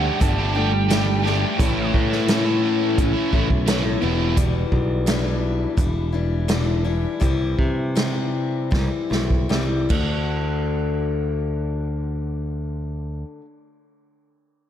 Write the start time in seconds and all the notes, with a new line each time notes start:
Already playing: G3 A3 D4 G4 F#5
0.20 G1 G3 A3 D4 G4 A5, kick, closed hi-hat
0.38 A3 D4 G4
0.55 G3 A3 D4 G4 G5
0.73 muted overdriven electric guitar stroke
0.90 G3 A3 D4 G4, snare, closed hi-hat
1.08 muted overdriven electric guitar stroke
1.23 G3 A3 D4 G4, snare
1.59 A1 A2 E3 A3 C#4 E4, kick, closed hi-hat
1.94 A2, kick
2.10 A3 C#4 E4, snare
2.28 A2 E3 A3 C#4 E4, snare, closed hi-hat
2.44 A3 C#4 E4
2.62 E3 A3 C#4 E4
2.98 A1 E3 A3 C#4 E4, kick, closed hi-hat
3.14 A3 C#4 E4
3.31 A1 E3 C#4 E4, kick
3.35 A3
3.49 B1, muted overdriven electric guitar stroke, kick
3.67 A2 E3 A3 C#4 E4, snare, closed hi-hat
3.84 muted overdriven electric guitar stroke
4.01 E1 E2 B2 E3 G3 B3 D4 E4
4.37 E2 B2 E3 G3 D4 E4, kick, closed hi-hat
4.72 B1, kick
5.06 E2 B2 E3 G3 D4 E4, snare, closed hi-hat
5.77 E1 E3 G3 D4 E4, kick, closed hi-hat
6.12 E3 G3 D4 E4
6.48 E2 B2 E3 G3 D4 E4, snare, closed hi-hat
6.84 E3 G3 D4 E4
7.20 C2 C3 E3 G3 C4 E4, kick, closed hi-hat
7.59 C3, kick
7.95 C3 E3 G3 C4 E4, snare, closed hi-hat
8.71 C2 E3 G3 C4 E4, kick, snare
9.10 B1 G3 C4 E4, snare
9.30 kick
9.49 C2 C3 E3 G3 C4 E4, snare
9.89 D2 D3 A3 D4, kick, crash
9.95 F#4